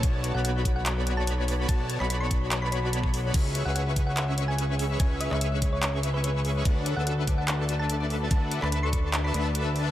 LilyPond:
<<
  \new Staff \with { instrumentName = "Synth pluck" } { \time 4/4 \key b \dorian \tempo 4 = 145 r8. fis''16 fis''16 r8 fis''16 r8. a''16 r4 | a''16 r8 b''16 b''16 cis'''16 r8. b''16 b''16 r4 r16 | r8. fis''16 fis''16 r8 fis''16 r8. gis''16 r4 | gis''16 r16 e''16 e''4 cis''16 cis''16 r8 b'16 b'16 r8. |
r8. fis''16 fis''16 r8 fis''16 r8. a''16 r4 | a''16 r8 b''16 b''16 cis'''16 r8. b''16 b''16 r4 r16 | }
  \new Staff \with { instrumentName = "Analog polysynth" } { \time 4/4 \key b \dorian <b fis' cis'' d'' a''>8. <b fis' cis'' d'' b''>2.~ <b fis' cis'' d'' b''>16 | <b fis' cis'' d'' a''>8. <b fis' cis'' d'' b''>2.~ <b fis' cis'' d'' b''>16 | <cis' gis' b' e'' cis'''>8. <cis' gis' b' e'' cis'''>2.~ <cis' gis' b' e'' cis'''>16 | <cis' gis' b' e'' cis'''>8. <cis' gis' b' e'' cis'''>2.~ <cis' gis' b' e'' cis'''>16 |
<d' a' b' e'' fis''>8. <d' a' b' e'' a''>2.~ <d' a' b' e'' a''>16 | <d' a' b' e'' fis''>8. <d' a' b' e'' a''>4.~ <d' a' b' e'' a''>16 <d' a' b' e'' a''>4. | }
  \new Staff \with { instrumentName = "Harp" } { \time 4/4 \key b \dorian b'16 cis''16 b'16 a'16 fis'16 a'16 b'16 cis''16 b'16 a'16 fis'16 a'16 b'16 cis''16 b'16 a'16 | fis'16 a'16 b'16 cis''16 b'16 a'16 fis'16 a'16 b'16 cis''16 cis''16 a''16 a'16 cis''16 a'16 fis'16 | gis'16 b'16 e''16 e''16 cis''16 b'16 gis'16 b'16 e''16 e''16 cis''16 b'16 gis'16 b'16 e''16 e''16 | cis''16 b'16 gis'16 b'16 e''16 e''16 cis''16 b'16 gis'16 b'16 e''16 e''16 cis''16 b'16 gis'16 b'16 |
d''16 d''16 b'16 a'16 fis'16 a'16 d''16 d''16 b'16 a'16 fis'16 a'16 d''16 d''16 b'16 a'16 | fis'16 a'16 d''16 d''16 b'16 a'16 fis'16 a'16 d''16 d''16 fis''16 d''16 fis'16 e''16 d''16 e''16 | }
  \new Staff \with { instrumentName = "Analog synth bass" } { \clef bass \time 4/4 \key b \dorian b,,8. b,,2.~ b,,16 | b,,8. b,,2.~ b,,16 | cis,8. cis,2.~ cis,16 | cis,8. cis,2.~ cis,16 |
d,8. d,2.~ d,16 | d,8. d,4.~ d,16 d,4. | }
  \new DrumStaff \with { instrumentName = "Drums" } \drummode { \time 4/4 <hh bd>8 hh8 hh8 <hh bd>8 <hc hh>8 hh8 hh8 hho8 | <hh bd>8 hh16 hc16 hh8 <hh bd>8 <hc hh>8 hh8 hh16 bd16 hho8 | <cymc hh bd>8 hh8 hh8 <hh bd>8 <hc hh>8 hh8 hh8 hho8 | <hh bd>8 hh16 hc16 hh8 <hh bd>8 <hc hh>8 hh8 hh8 hho8 |
<hh bd>8 hh8 hh8 <hh bd>8 <hc hh>8 hh8 hh8 hho8 | <hh bd>8 hh16 hc16 hh8 <hh bd>8 <hc hh>8 hh8 hh8 hho8 | }
>>